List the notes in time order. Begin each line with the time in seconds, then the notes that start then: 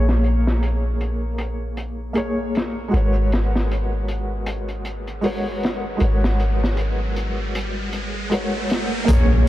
Already playing: A#1 A#3 G#4 C#5
0.09 snare
0.24 closed hi-hat
0.47 snare
0.63 closed hi-hat
1.01 closed hi-hat
1.38 closed hi-hat
1.77 closed hi-hat
2.13 A#3 G#4, closed hi-hat
2.17 C#5
2.55 snare, closed hi-hat
2.88 G#3 F#4
2.92 G#1 A#4 B4 C#5, closed hi-hat, riser
3.32 snare, closed hi-hat
3.55 snare
3.71 closed hi-hat
4.08 closed hi-hat
4.46 closed hi-hat
4.68 closed hi-hat
4.85 closed hi-hat
5.07 closed hi-hat
5.21 G#3 F#4 A#4 B4, open hi-hat
5.25 C#5
5.63 snare, closed hi-hat
5.97 G#1 G#3 F#4 A#4, closed hi-hat
6.02 B4 C#5
6.24 snare
6.39 closed hi-hat
6.64 snare
6.77 closed hi-hat
7.16 closed hi-hat
7.55 closed hi-hat
7.93 closed hi-hat
8.29 G#3 F#4 A#4 B4, closed hi-hat
8.34 C#5
8.70 snare, closed hi-hat
9.05 A#1 A#3, kick, closed hi-hat, impact
9.09 G#4 C#5